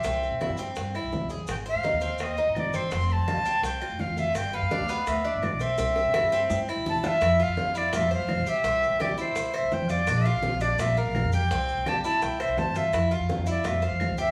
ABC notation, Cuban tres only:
X:1
M:4/4
L:1/8
Q:1/4=168
K:Cmix
V:1 name="Cuban tres"
C2 E C2 E2 _A- | _A c _E C2 E2 C | C2 F C2 F2 F- | F =B D =B,2 D2 C |
C2 E C2 E2 F | E F2 E F c2 G | C2 G E2 c2 F | D F2 D F B2 G |
C2 G E2 c2 F | E F2 E F c2 G |]